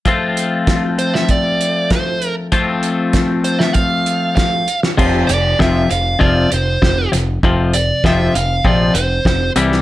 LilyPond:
<<
  \new Staff \with { instrumentName = "Lead electric guitar" } { \time 4/4 \key f \major \tempo 4 = 98 r4. c''16 e''16 d''4 c''8. r16 | r4. c''16 e''16 f''4 f''8. r16 | r8 d''8 e''8 f''8 d''8 c''4 r8 | r8 d''8 e''8 f''8 d''8 c''4 r8 | }
  \new Staff \with { instrumentName = "Clean electric guitar" } { \clef bass \time 4/4 \key f \major <f a c' f'>1 | <f a c' f'>2.~ <f a c' f'>8 r8 | <f, c f>8 <f, c>8 <f, c f>8 f,8 <f, c f>8 <f, c>8 <f, c>8 <f, c>8 | <f, c f>8 <f, c>8 <f, c f>8 <f, c>8 <f, c f>8 r8 <f, c>8 <c e g>8 | }
  \new Staff \with { instrumentName = "Picked electric bass" } { \clef bass \time 4/4 \key f \major r1 | r1 | f,,8 f,,8 f,,8 f,,8 f,,8 f,,8 f,,8 f,,8 | f,,4 f,,8 f,,8 bes,,8 f,,8 f,,8 c,8 | }
  \new DrumStaff \with { instrumentName = "Drums" } \drummode { \time 4/4 <hh bd>8 hh8 <hh bd sn>8 hh16 sn16 <hh bd>8 hh8 <hh bd sn>8 hh8 | <hh bd>8 hh8 <hh bd sn>8 hh16 sn16 <hh bd>8 hh8 <hh bd sn>8 hh16 sn16 | <cymc bd>8 hh8 <bd sn>8 hh8 bd8 hh8 <bd sn>8 <hh sn>8 | bd8 hh8 <bd sn>8 hh8 bd8 hh8 <bd sn>8 hh16 sn16 | }
>>